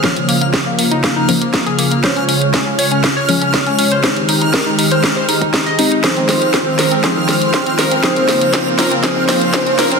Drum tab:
HH |xxoxx-oxx-oxxxox|xxoxx-oxx-oxxxox|xxoxx-oxx-oxxxox|xxoxx-oxx-oxxxox|
SD |o---o---o---o---|o---o---o---o---|o---o---o---o---|o-o-o-o-o-o-o-o-|
BD |o---o---o---o---|o---o---o---o---|o---o---o--oo---|o---o---o---o---|

HH |xxoxx-oxx-oxxxox|
SD |o-o-o-o-o-o-o-o-|
BD |o---o---o---o---|